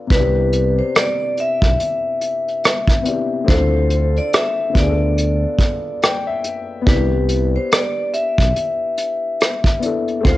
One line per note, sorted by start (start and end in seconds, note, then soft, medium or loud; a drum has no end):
0.00 0.13 F4 medium
0.00 0.10 A4 medium
0.07 0.82 C2 loud
0.07 3.00 C3 medium
0.07 3.02 B3 medium
0.07 kick loud
0.07 closed hi-hat medium
0.11 3.04 D4 medium
0.11 0.74 B4 loud
0.17 3.05 E4 medium
0.17 3.07 G4 medium
0.53 closed hi-hat medium
0.79 0.94 C5 medium
0.95 1.39 D5 medium
0.95 cross-stick loud
0.95 closed hi-hat medium
1.38 3.46 E5 medium
1.38 closed hi-hat medium
1.62 1.77 B1 medium
1.62 kick medium
1.62 closed hi-hat soft
1.80 closed hi-hat medium
2.21 closed hi-hat medium
2.48 closed hi-hat soft
2.64 cross-stick medium
2.64 closed hi-hat medium
2.88 kick medium
3.02 3.46 C3 medium
3.02 3.47 B3 medium
3.02 3.48 D4 soft
3.02 closed hi-hat medium
3.06 3.46 E4 soft
3.06 3.50 G4 medium
3.45 4.68 D3 medium
3.45 4.74 C4 medium
3.45 4.75 E4 medium
3.45 kick loud
3.49 4.19 D2 loud
3.49 4.76 F4 medium
3.49 4.77 A4 medium
3.49 4.16 C5 medium
3.49 closed hi-hat medium
3.90 closed hi-hat medium
4.17 4.34 D5 medium
4.17 closed hi-hat soft
4.33 4.72 E5 medium
4.33 cross-stick loud
4.33 closed hi-hat medium
4.70 6.80 D3 medium
4.70 6.80 B3 medium
4.75 5.46 D2 medium
4.75 6.83 D4 medium
4.75 6.24 D5 medium
4.75 kick medium
4.75 closed hi-hat medium
4.80 6.85 F4 medium
4.80 4.87 G#4 medium
4.89 6.90 A4 medium
5.18 closed hi-hat medium
5.59 kick loud
5.59 closed hi-hat medium
6.02 6.26 G5 medium
6.02 cross-stick medium
6.02 closed hi-hat medium
6.27 6.83 E5 medium
6.44 closed hi-hat medium
6.81 9.76 B3 medium
6.86 7.58 C2 loud
6.86 9.78 D4 medium
6.86 7.50 B4 medium
6.86 kick loud
6.86 closed hi-hat medium
6.90 9.80 E4 medium
6.95 9.83 G4 medium
7.29 closed hi-hat medium
7.56 7.72 C5 medium
7.72 8.10 D5 medium
7.72 cross-stick loud
7.72 closed hi-hat medium
8.14 10.21 E5 medium
8.14 closed hi-hat medium
8.38 8.53 B1 medium
8.38 kick medium
8.56 closed hi-hat medium
8.97 closed hi-hat medium
9.40 cross-stick medium
9.40 closed hi-hat medium
9.64 kick medium
9.79 10.23 B3 medium
9.79 10.24 D4 soft
9.79 closed hi-hat medium
9.83 10.24 E4 soft
9.83 10.26 A4 medium
10.08 closed hi-hat soft
10.21 10.38 A3 medium
10.21 10.38 C4 medium
10.25 10.38 D2 loud
10.25 10.38 E4 medium
10.25 10.38 F4 medium
10.25 10.38 C5 medium
10.25 kick loud
10.25 closed hi-hat medium